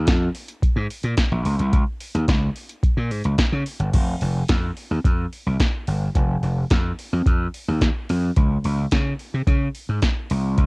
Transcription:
0.07 F2, kick, snare, closed hi-hat
0.35 open hi-hat
0.48 closed hi-hat
0.62 muted slap bass stroke, kick, closed hi-hat
0.76 G#2
0.90 open hi-hat
1.03 A#2, closed hi-hat
1.17 kick, snare, closed hi-hat
1.32 A#1
1.45 C#2, open hi-hat
1.59 C2, closed hi-hat
1.73 C#2, kick, closed hi-hat
2.00 open hi-hat
2.15 D#2, closed hi-hat
2.28 C#2, kick, snare, closed hi-hat
2.56 open hi-hat
2.69 closed hi-hat
2.83 kick, closed hi-hat
2.97 A#2
3.11 G#2, open hi-hat
3.24 C#2, closed hi-hat
3.38 kick, snare, closed hi-hat
3.52 C#3
3.66 open hi-hat
3.80 G1, closed hi-hat
3.94 F1, kick, closed hi-hat, crash
4.21 F1, open hi-hat
4.48 F2, kick, snare, closed hi-hat
4.77 open hi-hat
4.91 D#2
5.05 F2, kick, closed hi-hat
5.33 open hi-hat
5.46 C2
5.60 kick, snare, closed hi-hat
5.87 G1, open hi-hat
6.15 F1, kick, closed hi-hat
6.43 F1, open hi-hat
6.70 F2, kick, snare, closed hi-hat
6.99 open hi-hat
7.13 F2
7.26 F2, kick, closed hi-hat
7.54 open hi-hat
7.68 D#2
7.81 kick, snare, closed hi-hat
8.09 F2, open hi-hat
8.36 C#2, kick, closed hi-hat
8.64 C#2, open hi-hat
8.91 C#3, kick, snare, closed hi-hat
9.19 open hi-hat
9.34 C3
9.47 C#3, kick, closed hi-hat
9.75 open hi-hat
9.89 G#2
10.02 kick, snare, closed hi-hat
10.30 C2, open hi-hat
10.58 C#2, kick, closed hi-hat

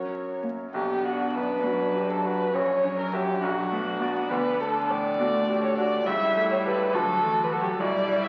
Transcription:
Already playing: F#2 C#4 F#4 A#4 C#5
0.43 A#3
0.73 B1 B3 D4 G4
1.05 D4 F#4
1.35 F#2 B4
1.65 F#3 F#4
1.96 G4
2.10 A4
2.24 F#4 B4
2.54 A#1 F#3 C#4 C#5
2.84 C#4
2.99 A#4
3.13 F#4 G4 E5
3.42 B1 F#3 D4 F#4
3.71 A3 B3
4.01 B3 F#4 D5
4.30 D2 B3 B4
4.60 A3 A4
4.91 A2 D5
5.20 A3 F#4
5.49 G4
5.64 C#5
5.78 F#4 D5
6.07 C#2 G3 E4 E5
6.36 A3
6.52 C#5
6.65 G4 A4 B4
6.93 D2 F#3 F#4 A4
7.22 E3 A3
7.44 B4
7.52 F#3 F#4 A4
7.61 G4
7.70 A4
7.80 B1 G3 E4 D5
8.08 G3
8.24 E5

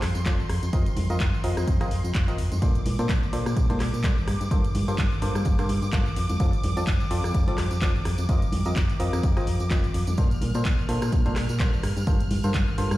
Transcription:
Already playing: C6
0.02 F2, cross-stick, clap, open hi-hat
0.15 F2, tambourine
0.26 F1 F3 C4 F4 A4 D5, kick, clap, closed hi-hat, tambourine
0.40 tambourine
0.49 F2, cross-stick, open hi-hat
0.63 F2, closed hi-hat, tambourine
0.73 F1 F3 C4 F4 A#4 D#5, kick, closed hi-hat, tambourine
0.86 closed hi-hat, tambourine
0.96 F2, open hi-hat, high conga
1.10 F2 F3 C4 F4 A#4 D#5, closed hi-hat, tambourine
1.20 F1, kick, clap, closed hi-hat, tambourine
1.34 tambourine
1.44 F2 F3 C4 F4 A#4 D#5, open hi-hat
1.57 F2, cross-stick, closed hi-hat, tambourine
1.68 F1, kick, closed hi-hat, tambourine
1.81 F3 C4 F4 A#4 D#5, cross-stick, closed hi-hat, tambourine
1.91 F2, open hi-hat
2.04 F2, closed hi-hat, tambourine
2.14 F1, kick, clap, closed hi-hat, tambourine
2.28 F3 C4 F4 A#4 D#5, closed hi-hat, tambourine
2.38 F2, open hi-hat
2.52 F2, closed hi-hat, tambourine, high conga
2.62 A#1 A#2 A#3 D4 A4 C5 D6, kick, closed hi-hat, tambourine
2.75 closed hi-hat, tambourine
2.86 A#2, open hi-hat, high conga
2.99 A#2 A#3 D4 A4 C5, closed hi-hat, tambourine
3.09 A#1, kick, clap, closed hi-hat, tambourine
3.23 tambourine
3.33 A#2 A#3 D4 A4 C5, open hi-hat
3.46 A#2, cross-stick, closed hi-hat, tambourine
3.57 A#1, kick, closed hi-hat, tambourine
3.70 A#2 A#3 D4 A4 C5, closed hi-hat, tambourine, high conga
3.80 A#2, cross-stick, clap, open hi-hat
3.94 A#2, tambourine
4.04 A#1 G2 A#3 D4 A4 C5, kick, clap, closed hi-hat, tambourine
4.18 tambourine
4.28 G2, cross-stick, open hi-hat
4.41 G2, closed hi-hat, tambourine
4.51 G1 G2 A#3 F4 A4 C5, kick, closed hi-hat, tambourine
4.64 closed hi-hat, tambourine
4.75 G2, open hi-hat, high conga
4.88 G2 A#3 F4 A4 C5, closed hi-hat, tambourine
4.98 G1, kick, clap, closed hi-hat, tambourine
5.12 tambourine
5.22 G2 A#3 F4 A4 C5, open hi-hat
5.35 G2, cross-stick, closed hi-hat, tambourine
5.45 G1, kick, closed hi-hat, tambourine
5.59 G2 A#3 F4 A4 C5, cross-stick, closed hi-hat, tambourine
5.69 G2, open hi-hat
5.82 G2, tambourine
5.93 G1 A#3 F4 A4 C5, kick, clap, closed hi-hat, tambourine
6.06 tambourine
6.16 F2, open hi-hat
6.29 F2, closed hi-hat, tambourine, high conga
6.40 F1 F3 C4 F4 A4 D5, kick, closed hi-hat, tambourine
6.53 closed hi-hat, tambourine
6.63 F2, open hi-hat, high conga
6.77 F2 F3 C4 F4 A4 D5, closed hi-hat, tambourine
6.87 F1, kick, clap, closed hi-hat, tambourine
7.00 tambourine
7.11 F2 F3 C4 F4 A4 D5, open hi-hat
7.24 F2, cross-stick, closed hi-hat, tambourine
7.34 F1, kick, closed hi-hat, tambourine
7.47 F3 C4 F4 A4 D5, closed hi-hat, tambourine, high conga
7.58 F2, cross-stick, clap, open hi-hat
7.71 F2, tambourine
7.82 F1 F3 C4 F4 A4 D5, kick, clap, closed hi-hat, tambourine
7.95 tambourine
8.05 F2, cross-stick, open hi-hat
8.18 F2, closed hi-hat, tambourine
8.29 F1 F3 C4 F4 A#4 D#5, kick, closed hi-hat, tambourine
8.42 closed hi-hat, tambourine
8.52 F2, open hi-hat, high conga
8.65 F2 F3 C4 F4 A#4 D#5, closed hi-hat, tambourine
8.76 F1, kick, clap, closed hi-hat, tambourine
8.89 closed hi-hat, tambourine
9.00 F2 F3 C4 F4 A#4 D#5, open hi-hat
9.13 F2, cross-stick, closed hi-hat, tambourine
9.23 F1, kick, closed hi-hat, tambourine
9.37 F3 C4 F4 A#4 D#5, cross-stick, closed hi-hat, tambourine
9.47 F2, open hi-hat
9.60 F2, tambourine
9.71 F1 F3 C4 F4 A#4 D#5, kick, clap, closed hi-hat, tambourine
9.83 closed hi-hat, tambourine
9.94 F2, open hi-hat
10.07 F2, closed hi-hat, tambourine, high conga
10.17 A#1 A#2 A#3 D4 A4 C5 F6, kick, closed hi-hat, tambourine
10.31 closed hi-hat, tambourine
10.41 A#2, open hi-hat, high conga
10.54 A#2 A#3 D4 A4 C5, closed hi-hat, tambourine
10.65 A#1, kick, clap, closed hi-hat, tambourine
10.79 tambourine
10.89 A#2 A#3 D4 A4 C5, open hi-hat
11.02 A#2, cross-stick, closed hi-hat, tambourine
11.12 A#1, kick, closed hi-hat, tambourine
11.25 A#2 A#3 D4 A4 C5, closed hi-hat, tambourine, high conga
11.36 A#2, cross-stick, clap, open hi-hat
11.49 A#2, tambourine
11.59 A#1 G2 A#3 D4 A4 C5, kick, clap, closed hi-hat, tambourine
11.73 tambourine
11.83 G2, cross-stick, open hi-hat
11.97 G2, closed hi-hat, tambourine
12.07 G1 G2 A#3 F4 A4 C5, kick, closed hi-hat, tambourine
12.20 closed hi-hat, tambourine
12.31 G2, open hi-hat, high conga
12.44 G2 A#3 F4 A4 C5, closed hi-hat, tambourine
12.54 G1, kick, clap, closed hi-hat, tambourine
12.67 tambourine
12.78 G2 A#3 F4 A4 C5, open hi-hat
12.91 G2, cross-stick, closed hi-hat, tambourine

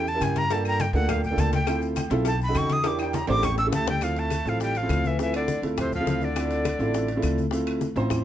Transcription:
Already playing: E2
0.07 A5, high conga, maracas
0.14 C#4 E4 G4 A#4
0.21 G2 G#5, cowbell, high conga, low agogo, claves, maracas
0.36 A#5, cowbell, high conga, maracas
0.50 A#3 D4 F4 A4 A5, cowbell, low agogo, maracas
0.65 A#5, high conga, low agogo, claves, maracas
0.80 G5, cowbell, high conga, maracas
0.93 D2 A#3 D4 F4 A4 F#5, high conga, low agogo, maracas
1.09 F5, cowbell, high conga, low conga, low agogo, claves, maracas
1.24 G5, high conga, low conga, maracas
1.31 A#3 D4 F4 A4
1.37 D2 A5, cowbell, high conga, low timbale, low agogo, maracas
1.52 G5, cowbell, high conga, low agogo, maracas
1.67 C4 E4 F4 A4, cowbell, high conga, low agogo, claves, maracas
1.82 high conga, maracas
1.96 cowbell, high conga, low agogo, claves, maracas
2.10 B1 C4 E4 F4 A4, cowbell, high conga, maracas
2.25 A5, cowbell, low agogo, maracas
2.41 B5, maracas
2.48 C#4 D#4 F#4 A4
2.55 E2 C#6, cowbell, high conga, low timbale, low agogo, claves, maracas
2.70 D#6, cowbell, high conga, maracas
2.84 D4 E4 G4 A#4 D6, cowbell, high conga, high timbale, low agogo, maracas
2.99 G5, high conga, high timbale, low agogo, claves, maracas
3.13 A#5, cowbell, high conga, high timbale, maracas
3.27 A1 D4 E4 G4 C5 D6, high conga, low timbale, low agogo, maracas
3.43 C#6, cowbell, high bongo, high conga, low conga, low timbale, low agogo, claves, maracas
3.58 E6, high bongo, maracas
3.65 C#4 E4 G4 A4
3.72 D2 A3 A5, cowbell, low bongo, high conga, low agogo, maracas
3.87 G3 G5, cowbell, low bongo, high conga, low timbale, low agogo, maracas
4.01 F3 C4 E4 F4 A4 F5, high bongo, high timbale, claves, maracas
4.16 A3 A5, high timbale, maracas
4.30 high bongo, high conga, high timbale, claves, maracas
4.45 A1 F3 C4 E4 F4 A4 F5, high bongo, high conga, maracas
4.60 G3 G5, high bongo, high conga, high timbale, maracas
4.75 F3 F5, high bongo, high conga, high timbale, maracas
4.82 C4 E4 F4 A4
4.89 D2, high bongo, low bongo, high conga, high timbale, claves, maracas
5.04 E3 E5, high bongo, high conga, maracas
5.19 E3 C4 E4 F4 A4 E5, high bongo, high timbale, maracas
5.34 D3 D5, high conga, high timbale, claves, maracas
5.48 high bongo, high conga, maracas
5.62 D2 C4 E4 F4 A4, high bongo, high conga, high timbale, maracas
5.78 C3 C5, high bongo, high conga, low conga, high timbale, claves, maracas
5.93 F3 F5, high bongo, high conga, low conga, maracas
5.99 C4 E4 F4 A4
6.06 D2, high bongo, low bongo, high conga, high timbale, maracas
6.21 D3 D5, high bongo, maracas
6.36 C4 E4 F4 A4, high bongo, high conga, high timbale, claves, maracas
6.51 high conga, high timbale, maracas
6.65 high bongo, high conga, high timbale, claves, maracas
6.79 A1 C4 E4 F4 A4, high bongo, high conga, maracas
6.94 high bongo, high conga, high timbale, maracas
7.08 high bongo, high conga, high timbale, maracas
7.16 C4 E4 F4 A4
7.22 D2, high bongo, low bongo, high conga, high timbale, claves, maracas
7.38 high bongo, high conga, maracas
7.51 C4 E4 F4 A4, high bongo, high timbale, maracas
7.67 high conga, high timbale, claves, maracas
7.81 high bongo, high conga, maracas
7.96 A1 C4 E4 F4 C5, high bongo, high conga, high timbale, maracas
8.10 high bongo, high conga, low conga, high timbale, claves, maracas

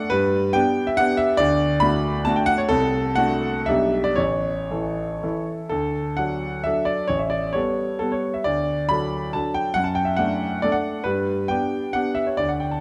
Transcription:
Already playing: F#5
0.10 G2 B4
0.53 B3 D4 G4 G5
0.87 E5
0.97 B3 D4 G4 F#5
1.17 E5
1.37 D2 D5
1.80 A3 D4 F#4 B5
2.25 A3 D4 F#4 A5
2.36 G5
2.46 F#5
2.58 C#5
2.69 C2 A4
3.16 A3 D4 F#4 F#5
3.66 B1 G3 D4 G4 E5
4.04 D5
4.16 A1 C#5
4.71 E3 E4 A4
5.23 E3 E4 A4
5.69 D2 A4
6.17 F#3 D4 A4 F#5
6.64 F#3 D4 A4 E5
6.85 D5
7.08 A1 C#5
7.19 E5
7.30 D5
7.53 G3 B3 A4 C#5
7.99 G3 B3 A4
8.12 C#5
8.34 E5
8.44 D2 D5
8.89 F#3 D4 A4 B5
9.33 F#3 D4 A4 A5
9.54 G5
9.74 F#2 F#5
9.84 A5
9.95 G5
10.05 E5
10.16 A3 D4 A4 F#5
10.62 A3 D4 A4 D5
10.72 F#5
11.04 G2 B4
11.48 B3 D4 G4 G5
11.93 B3 D4 G4 F#5
12.15 E5
12.27 C#5
12.37 D2 D5
12.49 F#5
12.60 G5
12.71 A5

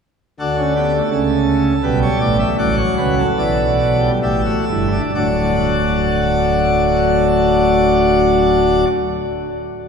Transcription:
0.40 D2 D3 D4 F#4 A4
0.58 C#4
0.76 B3 G4
0.94 A3
1.11 C#2 C#3 A4
1.84 B1 B2 G3 B4
2.02 C#5
2.20 A1 A2 D5
2.39 E5
2.59 A1 A2 F#3 D5 F#5
2.78 C#5
2.97 C#2 C#3 B4
3.19 A4
3.38 B1 B2 E3 D5
3.80 F#3
4.00 G3
4.23 A1 A2 A3 G4 E5
4.45 F#4
4.69 G1 G2 E4
4.92 D4
5.15 D1 D2 F#3 A3 D4 F#4 D5

